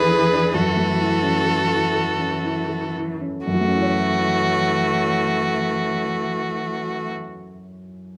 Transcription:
0.00 0.50 E2 medium
0.00 3.19 E3 medium
0.00 0.57 A3 soft
0.00 0.32 D4 soft
0.00 0.11 E4 soft
0.00 0.55 G#4 medium
0.00 0.57 A4 soft
0.00 0.56 B4 medium
0.11 0.45 E4 soft
0.32 0.54 D4 soft
0.54 3.42 F#2 soft
0.54 2.93 F#4 soft
0.54 2.94 A4 medium
0.76 1.12 A3 soft
0.99 1.36 E4 soft
1.23 1.60 C#4 soft
1.46 1.83 A4 soft
1.70 2.08 E4 soft
1.94 2.33 A4 soft
2.19 2.58 C#4 soft
2.44 2.84 E4 soft
2.69 3.10 A4 soft
2.94 3.36 E4 soft
3.21 3.47 C#4 soft
3.46 7.12 F#2 soft
3.46 7.12 E3 medium
3.46 7.11 A3 soft
3.46 7.12 F#4 medium
3.54 7.19 F#3 soft
3.61 7.26 A3 soft
3.68 7.33 C#4 soft
3.75 7.40 E4 soft
3.82 7.47 C#5 soft

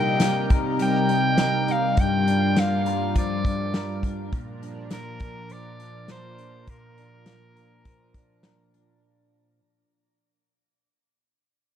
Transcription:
0.00 1.95 C3 medium
0.00 1.97 C3 medium
0.00 4.28 G3 medium
0.00 0.21 A#3 soft
0.00 1.08 D#4 medium
0.00 1.94 D#4 medium
0.00 0.50 A#4 medium
0.00 4.28 A#4 medium
0.00 0.54 G5 medium
0.20 2.57 A#3 soft
0.20 snare medium
0.20 closed hi-hat medium
0.50 1.39 A#4 medium
0.50 kick medium
0.50 closed hi-hat soft
0.79 3.15 G3 medium
0.79 1.73 G5 loud
0.79 closed hi-hat medium
1.09 1.67 D#4 medium
1.09 closed hi-hat soft
1.38 2.86 A#4 medium
1.38 snare loud
1.38 closed hi-hat medium
1.68 2.03 D#4 medium
1.68 2.02 F5 medium
1.68 closed hi-hat soft
1.97 4.30 G2 medium
1.97 4.32 G2 medium
1.97 4.30 F4 medium
1.97 2.61 G5 loud
1.97 kick medium
1.97 closed hi-hat medium
2.28 3.44 D4 medium
2.28 closed hi-hat medium
2.56 4.91 A#3 medium
2.56 3.16 F5 medium
2.56 snare medium
2.56 closed hi-hat medium
2.86 3.74 A#4 medium
2.86 closed hi-hat soft
3.16 5.50 F3 medium
3.16 4.01 D5 medium
3.16 kick medium
3.16 closed hi-hat medium
3.44 4.04 D4 medium
3.44 kick medium
3.44 closed hi-hat soft
3.74 5.21 A#4 medium
3.74 snare loud
3.74 closed hi-hat soft
4.03 4.62 D4 medium
4.03 kick medium
4.03 closed hi-hat soft
4.32 8.99 A#2 medium
4.32 6.68 A#2 medium
4.32 8.99 F3 medium
4.32 8.99 D4 medium
4.32 8.99 A#4 medium
4.32 kick loud
4.32 closed hi-hat medium
4.62 5.79 D4 medium
4.62 closed hi-hat soft
4.90 7.27 A#3 soft
4.90 5.54 A#4 medium
4.90 snare loud
4.90 closed hi-hat medium
5.20 6.09 A#4 medium
5.20 kick medium
5.20 closed hi-hat soft
5.49 7.85 F3 medium
5.49 6.10 D5 loud
5.49 closed hi-hat soft
5.80 6.39 D4 medium
5.80 closed hi-hat soft
6.08 7.56 A#4 medium
6.08 6.71 C5 medium
6.08 snare medium
6.08 closed hi-hat medium
6.38 6.98 D4 soft
6.38 closed hi-hat soft
6.67 9.59 A#2 medium
6.67 8.45 A#4 medium
6.67 kick medium
6.67 closed hi-hat medium
6.98 8.15 D4 soft
6.98 closed hi-hat soft
7.26 9.59 A#3 soft
7.26 snare medium
7.26 closed hi-hat medium
7.56 8.44 A#4 soft
7.56 closed hi-hat soft
7.85 9.59 F3 medium
7.85 kick medium
7.85 closed hi-hat medium
8.14 8.73 D4 soft
8.14 kick medium
8.14 closed hi-hat soft
8.43 9.59 A#4 soft
8.43 snare medium
8.43 closed hi-hat medium
8.74 9.59 D4 medium
8.74 closed hi-hat soft

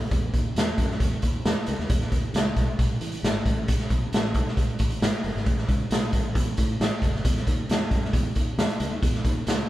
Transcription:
0.11 0.28 E2 loud
0.11 kick loud
0.11 closed hi-hat medium
0.34 0.51 D#2 medium
0.34 kick medium
0.34 closed hi-hat medium
0.55 0.72 E2 medium
0.55 snare loud
0.55 closed hi-hat loud
0.78 0.95 F#2 medium
0.78 kick medium
0.78 closed hi-hat medium
0.91 snare soft
1.00 1.17 E2 medium
1.00 kick medium
1.00 closed hi-hat medium
1.22 1.40 D#2 medium
1.22 kick medium
1.22 closed hi-hat medium
1.45 1.53 E2 medium
1.45 snare loud
1.45 closed hi-hat medium
1.66 1.76 C#2 medium
1.66 closed hi-hat medium
1.79 1.87 D#2 medium
1.79 snare soft
1.90 2.06 E2 loud
1.90 kick loud
1.90 closed hi-hat medium
2.01 snare soft
2.12 2.29 D#2 medium
2.12 kick medium
2.12 closed hi-hat medium
2.34 2.51 C#2 medium
2.34 snare loud
2.34 closed hi-hat medium
2.57 2.73 B1 medium
2.57 kick medium
2.57 closed hi-hat medium
2.79 2.96 B1 medium
2.79 kick medium
2.79 closed hi-hat medium
3.01 3.18 E3 medium
3.01 closed hi-hat medium
3.12 closed hi-hat medium
3.23 3.40 G#1 loud
3.23 snare loud
3.23 closed hi-hat medium
3.46 3.79 A1 medium
3.46 kick medium
3.46 closed hi-hat medium
3.68 kick loud
3.68 closed hi-hat loud
3.80 snare soft
3.90 4.07 B1 medium
3.90 kick medium
3.90 closed hi-hat medium
4.12 4.35 A1 medium
4.12 snare loud
4.12 closed hi-hat medium
4.34 4.57 B1 medium
4.34 kick medium
4.34 closed hi-hat medium
4.48 snare soft
4.57 4.74 C#2 medium
4.57 kick loud
4.57 closed hi-hat medium
4.79 4.96 A1 medium
4.79 kick medium
4.79 closed hi-hat medium
4.90 closed hi-hat medium
5.02 5.10 G#1 medium
5.02 snare loud
5.02 closed hi-hat medium
5.24 5.33 F#1 medium
5.24 open hi-hat medium
5.35 5.44 G#1 medium
5.35 snare soft
5.46 5.63 A1 medium
5.46 kick loud
5.46 closed hi-hat medium
5.58 snare soft
5.69 5.85 C#2 medium
5.69 kick medium
5.69 closed hi-hat medium
5.91 6.08 B1 medium
5.91 snare loud
5.91 closed hi-hat medium
6.13 6.35 A1 medium
6.13 kick medium
6.13 closed hi-hat medium
6.35 6.52 E2 medium
6.35 kick medium
6.35 closed hi-hat medium
6.57 6.75 A2 medium
6.57 kick medium
6.57 closed hi-hat medium
6.80 6.88 A1 medium
6.80 snare loud
6.80 closed hi-hat medium
7.02 7.19 F#1 medium
7.02 kick medium
7.02 closed hi-hat medium
7.16 snare soft
7.25 7.42 E2 loud
7.25 kick loud
7.25 closed hi-hat medium
7.37 snare soft
7.47 7.64 D#2 medium
7.47 kick medium
7.47 closed hi-hat medium
7.69 7.86 E2 medium
7.69 snare loud
7.69 closed hi-hat medium
7.91 8.08 F#2 medium
7.91 kick medium
7.91 closed hi-hat medium
8.05 snare soft
8.13 8.30 E2 loud
8.13 kick loud
8.13 closed hi-hat medium
8.35 8.53 D#2 medium
8.35 kick medium
8.35 closed hi-hat medium
8.58 8.66 E2 medium
8.58 snare loud
8.58 closed hi-hat medium
8.69 closed hi-hat soft
8.80 8.89 C#2 medium
8.80 closed hi-hat medium
8.91 9.00 D#2 medium
9.02 9.19 E2 medium
9.02 kick loud
9.02 closed hi-hat medium
9.14 snare soft
9.25 9.42 D#2 medium
9.25 kick medium
9.25 closed hi-hat medium
9.47 9.64 C#2 medium
9.47 snare loud
9.47 closed hi-hat medium

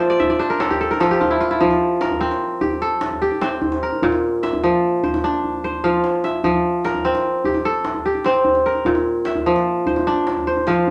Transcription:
0.00 1.53 A#2 medium
0.00 0.99 F3 medium
0.00 0.39 C4 medium
0.00 0.26 A#4 medium
0.00 0.39 C5 medium
0.00 0.19 E5 medium
0.00 0.26 F5 medium
0.00 0.53 G5 medium
0.10 0.29 D5 medium
0.20 1.06 E5 medium
0.20 djembe bass medium
0.30 1.41 D5 medium
0.30 djembe slap soft
0.30 djembe tone medium
0.39 2.07 D4 medium
0.39 1.58 C5 medium
0.50 0.87 A#4 medium
0.60 0.80 A4 medium
0.60 djembe slap medium
0.70 1.10 G4 medium
0.70 djembe slap soft
0.70 djembe bass medium
0.81 1.00 A4 medium
0.81 djembe slap soft
0.91 2.01 A#4 medium
0.91 djembe tone medium
1.00 1.59 F3 medium
1.00 2.07 A4 medium
1.00 djembe slap medium
1.11 2.52 G4 medium
1.21 1.40 F4 medium
1.21 djembe bass medium
1.31 1.50 E4 medium
1.40 2.92 F4 medium
1.51 3.07 E4 medium
1.51 djembe slap soft
1.51 djembe tone medium
1.61 3.95 F3 medium
1.61 djembe bass medium
1.71 djembe slap soft
2.01 2.88 A#4 medium
2.01 djembe slap medium
2.11 djembe tone medium
2.11 djembe bass medium
2.21 3.41 C4 medium
2.31 djembe slap medium
2.41 djembe slap soft
2.61 3.21 G4 medium
2.61 djembe bass medium
2.71 djembe tone soft
2.82 3.89 A4 medium
3.01 djembe slap medium
3.11 djembe slap soft
3.11 djembe bass medium
3.21 4.63 G4 medium
3.21 djembe slap soft
3.31 djembe tone medium
3.41 5.22 C4 medium
3.41 4.61 C5 medium
3.41 djembe slap medium
3.62 djembe bass medium
3.72 djembe slap medium
3.83 5.10 A#4 medium
3.92 djembe slap soft
3.92 djembe tone medium
4.02 6.37 A#2 medium
4.02 djembe bass medium
4.12 djembe slap medium
4.33 djembe slap soft
4.43 5.46 E5 medium
4.43 djembe slap medium
4.53 djembe slap soft
4.53 djembe tone medium
4.53 djembe bass medium
4.64 5.83 F3 medium
4.83 djembe slap soft
5.04 5.64 C5 medium
5.04 djembe bass medium
5.14 djembe slap soft
5.14 djembe tone medium
5.24 6.92 D4 medium
5.24 djembe slap soft
5.44 djembe bass soft
5.64 6.83 C5 medium
5.64 djembe bass soft
5.84 6.43 F3 medium
5.84 6.84 F5 medium
5.84 djembe bass medium
6.04 djembe slap medium
6.24 7.28 E5 medium
6.24 djembe slap medium
6.44 8.78 F3 medium
6.44 djembe bass medium
6.85 7.71 A#4 medium
6.85 djembe slap medium
6.94 djembe tone medium
6.94 djembe bass medium
7.05 8.25 C4 medium
7.15 djembe slap medium
7.25 djembe slap soft
7.45 8.05 G4 medium
7.45 djembe bass medium
7.54 djembe slap soft
7.54 djembe tone soft
7.65 8.72 A4 medium
7.85 djembe slap medium
7.95 djembe slap soft
7.95 djembe bass soft
8.05 9.47 G4 medium
8.05 djembe slap soft
8.15 djembe tone soft
8.24 10.06 C4 medium
8.24 9.44 C5 medium
8.24 djembe slap medium
8.45 djembe bass medium
8.55 djembe slap soft
8.66 9.93 A#4 medium
8.75 djembe slap soft
8.75 djembe tone soft
8.85 10.90 A#2 medium
8.85 djembe bass medium
8.95 djembe slap soft
9.25 10.30 E5 medium
9.25 djembe slap medium
9.35 djembe tone medium
9.35 djembe bass soft
9.46 10.66 F3 medium
9.56 djembe slap medium
9.66 djembe slap soft
9.86 10.47 C5 medium
9.86 djembe bass medium
9.96 djembe slap soft
9.96 djembe tone medium
10.07 10.90 D4 medium
10.27 djembe slap medium
10.37 djembe slap soft
10.37 djembe bass medium
10.47 10.90 C5 medium
10.47 djembe slap soft
10.57 djembe tone medium
10.67 10.90 F3 medium
10.67 10.90 F5 medium
10.67 djembe slap medium

